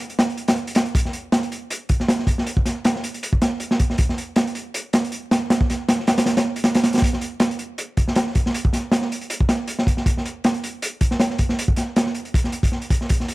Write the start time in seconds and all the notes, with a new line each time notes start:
0.10 closed hi-hat
0.19 snare, closed hi-hat
0.30 closed hi-hat
0.38 closed hi-hat
0.48 snare, closed hi-hat
0.56 closed hi-hat
0.67 closed hi-hat
0.75 snare, closed hi-hat
0.85 closed hi-hat
0.95 kick, closed hi-hat
1.05 snare
1.13 closed hi-hat
1.32 snare, closed hi-hat
1.43 closed hi-hat
1.52 closed hi-hat
1.70 closed hi-hat
1.89 kick, closed hi-hat
2.00 snare
2.09 snare, closed hi-hat
2.19 snare
2.27 kick, closed hi-hat
2.38 snare
2.47 closed hi-hat
2.57 kick
2.65 snare, closed hi-hat
2.84 snare, closed hi-hat
2.96 snare
3.04 closed hi-hat
3.14 closed hi-hat
3.23 closed hi-hat
3.33 kick
3.42 snare, closed hi-hat
3.60 closed hi-hat
3.71 snare
3.80 kick, closed hi-hat
3.90 snare
3.98 kick, closed hi-hat
4.09 snare
4.18 closed hi-hat
4.36 snare, closed hi-hat
4.47 closed hi-hat
4.55 closed hi-hat
4.74 closed hi-hat
4.93 snare, closed hi-hat
5.04 closed hi-hat
5.12 closed hi-hat
5.31 snare, closed hi-hat
5.50 snare, closed hi-hat
5.61 kick
5.70 snare, closed hi-hat
5.89 snare, closed hi-hat
6.00 snare
6.07 snare, closed hi-hat
6.18 snare, closed hi-hat
6.26 snare, closed hi-hat
6.37 snare, closed hi-hat
6.56 closed hi-hat
6.64 snare, closed hi-hat
6.74 snare, closed hi-hat
6.83 snare, closed hi-hat
6.93 snare, closed hi-hat
6.97 snare, closed hi-hat
7.02 kick, closed hi-hat
7.13 snare
7.21 closed hi-hat
7.40 snare, closed hi-hat
7.51 closed hi-hat
7.59 closed hi-hat
7.78 closed hi-hat
7.97 kick, closed hi-hat
8.08 snare
8.15 snare, closed hi-hat
8.27 snare
8.35 kick, closed hi-hat
8.46 snare
8.54 closed hi-hat
8.65 kick
8.73 snare, closed hi-hat
8.92 snare, closed hi-hat
9.02 snare
9.12 closed hi-hat
9.21 closed hi-hat
9.30 closed hi-hat
9.41 kick
9.49 snare, closed hi-hat
9.68 closed hi-hat
9.79 snare
9.87 kick, closed hi-hat
9.97 snare
10.06 kick, closed hi-hat
10.17 snare
10.25 closed hi-hat
10.44 snare, closed hi-hat
10.54 closed hi-hat
10.64 closed hi-hat
10.82 closed hi-hat
11.01 kick, closed hi-hat
11.11 snare
11.20 snare, closed hi-hat
11.30 snare
11.38 kick, closed hi-hat
11.49 snare
11.59 closed hi-hat
11.68 kick
11.76 snare, closed hi-hat
11.96 snare, closed hi-hat
12.06 snare
12.15 closed hi-hat
12.25 closed hi-hat
12.34 kick, closed hi-hat
12.44 snare
12.52 closed hi-hat
12.63 kick, closed hi-hat
12.72 snare
12.82 closed hi-hat
12.90 kick, closed hi-hat
13.01 snare
13.09 kick, closed hi-hat
13.20 snare
13.28 closed hi-hat